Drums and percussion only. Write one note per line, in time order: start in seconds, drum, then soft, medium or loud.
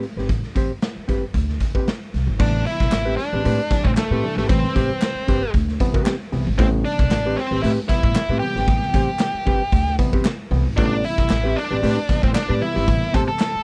0.03 closed hi-hat medium
0.18 snare soft
0.29 kick loud
0.29 closed hi-hat medium
0.43 snare soft
0.56 kick medium
0.56 closed hi-hat medium
0.82 snare loud
0.82 closed hi-hat medium
1.09 kick medium
1.09 closed hi-hat medium
1.34 kick medium
1.34 closed hi-hat medium
1.49 snare soft
1.60 kick medium
1.60 closed hi-hat medium
1.75 kick medium
1.87 snare loud
1.87 closed hi-hat medium
2.14 snare soft
2.14 closed hi-hat medium
2.40 kick loud
2.40 crash loud
2.66 closed hi-hat medium
2.80 kick medium
2.80 snare soft
2.92 snare loud
2.92 clap medium
2.92 closed hi-hat loud
3.19 snare soft
3.19 closed hi-hat medium
3.45 closed hi-hat medium
3.71 kick medium
3.71 snare soft
3.71 closed hi-hat medium
3.85 kick loud
3.97 snare loud
3.97 clap loud
3.97 closed hi-hat medium
4.23 open hi-hat medium
4.37 snare soft
4.49 kick loud
4.49 closed hi-hat medium
4.64 snare soft
4.76 kick loud
4.76 closed hi-hat medium
5.01 snare loud
5.01 clap medium
5.01 closed hi-hat loud
5.28 kick medium
5.28 closed hi-hat medium
5.54 kick medium
5.54 closed hi-hat medium
5.68 snare soft
5.80 kick medium
5.80 closed hi-hat medium
5.94 kick loud
6.06 snare loud
6.06 clap loud
6.06 closed hi-hat medium
6.32 snare soft
6.32 open hi-hat medium
6.59 kick loud
6.59 closed hi-hat medium
6.86 closed hi-hat medium
6.99 kick loud
6.99 snare soft
7.11 snare loud
7.11 clap medium
7.11 closed hi-hat loud
7.38 snare soft
7.38 open hi-hat medium
7.64 closed hi-hat loud
7.89 kick medium
7.89 snare soft
7.89 closed hi-hat medium
8.03 kick loud
8.15 snare loud
8.15 clap loud
8.15 closed hi-hat loud
8.42 open hi-hat medium
8.56 snare soft
8.68 kick loud
8.68 closed hi-hat medium
8.82 snare soft
8.93 kick loud
8.93 closed hi-hat loud
9.19 snare loud
9.19 clap medium
9.19 closed hi-hat loud
9.46 kick medium
9.46 open hi-hat soft
9.72 kick medium
9.72 closed hi-hat medium
9.87 snare soft
9.99 kick medium
9.99 closed hi-hat medium
10.13 kick loud
10.25 snare loud
10.25 clap loud
10.25 closed hi-hat loud
10.52 snare soft
10.52 open hi-hat medium
10.77 kick loud
10.77 closed hi-hat medium
11.04 closed hi-hat medium
11.18 kick medium
11.18 snare soft
11.29 snare loud
11.29 clap medium
11.29 closed hi-hat loud
11.58 snare soft
11.58 closed hi-hat medium
11.83 closed hi-hat medium
12.09 kick medium
12.09 snare soft
12.09 closed hi-hat medium
12.23 kick loud
12.35 snare loud
12.35 clap loud
12.35 closed hi-hat loud
12.61 open hi-hat medium
12.76 snare soft
12.88 kick loud
12.88 closed hi-hat loud
13.02 snare soft
13.14 kick loud
13.14 closed hi-hat medium
13.39 snare loud
13.39 clap medium
13.39 closed hi-hat loud